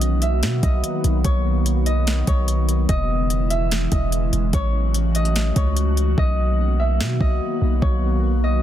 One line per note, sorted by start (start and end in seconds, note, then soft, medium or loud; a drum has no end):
0.00 0.44 B1 loud
0.00 2.86 D#3 medium
0.00 2.85 F#3 medium
0.00 2.86 A#3 medium
0.00 4.50 B3 medium
0.00 2.85 F#4 medium
0.00 0.90 C#5 medium
0.00 0.28 D#5 loud
0.00 closed hi-hat medium
0.22 0.70 E5 medium
0.22 closed hi-hat medium
0.42 0.62 B2 medium
0.42 snare loud
0.42 closed hi-hat medium
0.63 0.83 B1 loud
0.63 1.86 D#5 medium
0.63 kick medium
0.63 closed hi-hat medium
0.84 closed hi-hat medium
1.04 1.24 B1 loud
1.04 closed hi-hat medium
1.24 2.23 B1 loud
1.24 2.27 C#5 medium
1.24 kick medium
1.24 closed hi-hat medium
1.66 closed hi-hat medium
1.86 2.89 D#5 medium
1.86 closed hi-hat medium
2.07 snare loud
2.07 closed hi-hat medium
2.27 2.87 B1 loud
2.27 4.19 C#5 medium
2.27 kick medium
2.27 closed hi-hat medium
2.48 closed hi-hat medium
2.69 closed hi-hat medium
2.89 3.88 E1 loud
2.89 4.52 C#3 medium
2.89 6.15 E3 medium
2.89 4.52 G#3 medium
2.89 4.52 E4 medium
2.89 3.56 D#5 loud
2.89 kick loud
2.89 closed hi-hat medium
3.30 closed hi-hat medium
3.50 3.98 E5 medium
3.50 closed hi-hat medium
3.71 snare medium
3.71 closed hi-hat medium
3.92 4.31 E1 loud
3.92 5.15 D#5 medium
3.92 kick medium
3.92 closed hi-hat medium
4.12 closed hi-hat medium
4.33 4.53 E1 loud
4.33 closed hi-hat medium
4.53 5.52 A1 loud
4.53 8.62 F#3 medium
4.53 6.16 A3 medium
4.53 6.16 C#4 medium
4.53 8.62 F#4 medium
4.53 5.56 C#5 loud
4.53 kick loud
4.53 closed hi-hat medium
4.94 closed hi-hat medium
5.15 6.18 D#5 medium
5.15 closed hi-hat medium
5.15 open hi-hat soft
5.25 closed hi-hat soft
5.36 snare loud
5.36 closed hi-hat medium
5.56 6.15 C#2 loud
5.56 7.47 C#5 medium
5.56 kick medium
5.56 closed hi-hat medium
5.77 closed hi-hat medium
5.97 closed hi-hat medium
6.18 7.02 B1 loud
6.18 8.62 D#3 medium
6.18 8.62 A#3 medium
6.18 8.62 B3 medium
6.18 6.86 D#5 loud
6.18 kick medium
6.80 7.27 E5 medium
7.00 7.20 B2 medium
7.00 snare loud
7.21 7.40 B1 loud
7.21 8.43 D#5 medium
7.21 kick medium
7.62 7.81 B1 loud
7.82 8.62 B1 loud
7.82 8.62 C#5 medium
7.82 kick loud
8.44 8.62 D#5 medium